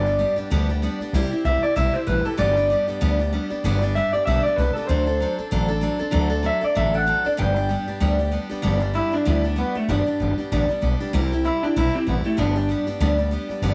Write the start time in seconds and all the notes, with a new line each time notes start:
Already playing: G1 D5
0.06 G3 B3 D4 G4
0.19 G3 B3 D4 G4
0.36 G3 B3 D4 G4, muted upright bass stroke
0.50 D2 G2 D3 G3 B3 D4 G4
0.69 G3 B3 D4 G4
0.82 G3 B3 D4 G4
1.00 G3 B3 D4 G4, muted upright bass stroke
1.13 C2 C3 G3 C4 E4 G4
1.31 C4 E4 G4, muted upright bass stroke
1.45 C2 G3 C4 E4 G4 E5
1.63 C4 E4 G4 D5, muted upright bass stroke
1.76 B1 C3 G3 C4 E4 G4 E5
1.94 C4 E4 G4 C5, muted upright bass stroke
2.07 A1 G3 C4 E4 G4 B4
2.25 C4 E4 G4 A4, muted upright bass stroke
2.37 G1 G2 D3 G3 B3 D4 G4 D5
2.56 G3 B3 D4 G4
2.70 G3 B3 D4 G4
2.88 G3 B3 D4 G4, muted upright bass stroke
3.01 D2 G2 D3 G3 B3 D4 G4
3.19 G3 B3 D4 G4
3.33 G3 B3 D4 G4
3.50 G3 B3 D4 G4, muted upright bass stroke
3.64 G1 G2 D3 G3 B3 D4 G4
3.82 G3 B3 D4 G4
3.95 G3 B3 D4 G4 E5
4.13 G3 B3 D4 G4 D5, muted upright bass stroke
4.26 B1 G2 D3 G3 B3 D4 G4 E5
4.43 D4 G4 D5, muted upright bass stroke
4.48 G3 B3
4.56 C2 G3 B3 D4 B4
4.61 G4
4.73 D4 G4 A4, muted upright bass stroke
4.78 G3 B3
4.87 D2 D3 F#3 C4 D4 A4 C5
5.07 C4 D4 A4
5.20 F#3 C4 D4 A4
5.39 C4 D4 A4, muted upright bass stroke
5.51 A1 D3 F#3 C4 D4 A4
5.68 C4 D4 A4
5.81 F#3 C4 D4 A4
5.99 C4 D4 A4, muted upright bass stroke
6.11 D2 D3 F#3 C4 D4 A4
6.30 C4 D4 A4
6.43 F#3 C4 D4 A4 E5
6.61 C4 D4 A4 D5, muted upright bass stroke
6.75 A1 D3 F#3 C4 D4 A4 E5
6.94 C4 D4 A4 F#5
7.07 F#3 C4 D4 A4
7.25 C4 D4 A4 D5, muted upright bass stroke
7.37 G1 G2 D3 G3 B3 D4 G4 G5
7.56 G3 B3 D4 G4
7.69 G3 B3 D4 G4
7.88 G3 B3 D4 G4, muted upright bass stroke
8.00 D2 G2 D3 G3 B3 D4 G4
8.19 G3 B3 D4 G4
8.31 G3 B3 D4 G4
8.49 G3 B3 D4 G4, muted upright bass stroke
8.62 G1 G2 D3 G3 B3 D4 G4
8.80 G3 B3 D4 G4
8.93 G3 B3 D4 E4 G4
9.12 G3 B3 D4 G4, muted upright bass stroke
9.25 D2 G2 D3 G3 B3 D4 E4 G4
9.44 G3 B3 D4 G4
9.56 G3 B3 D4 G4
9.75 G3 A3 B3 D4 G4, muted upright bass stroke
9.88 G1 G2 D3 G3 B3 D4 G4
10.06 G3 B3 D4 G4, muted upright bass stroke
10.20 G1 G3 B3 D4 G4
10.38 G3 B3 D4 G4, muted upright bass stroke
10.52 A1 G2 D3 G3 B3 D4 G4
10.69 G3 B3 D4 G4, muted upright bass stroke
10.81 B1 G3 B3 D4 G4
11.00 G3 B3 D4 G4, muted upright bass stroke
11.13 C2 C3 G3 C4 E4 G4
11.32 C4 E4 G4
11.45 G3 C4 E4 G4
11.63 C4 D4 E4 G4, muted upright bass stroke
11.76 B1 C3 G3 C4 E4 G4
11.94 C4 E4 G4, muted upright bass stroke
12.07 A1 G3 B3 C4 E4 G4
12.24 A3 C4 E4 G4, muted upright bass stroke
12.37 G1 G2 D3 G3 B3 D4 G4
12.56 G3 B3 D4 G4
12.69 G3 B3 D4 G4
12.87 G3 B3 D4 G4, muted upright bass stroke
13.00 D2 G2 D3 G3 B3 D4 G4
13.18 G3 B3 D4 G4
13.31 G3 B3 D4 G4
13.49 G3 B3 D4 G4, muted upright bass stroke
13.62 G1 G2 D3 G3 B3 D4 G4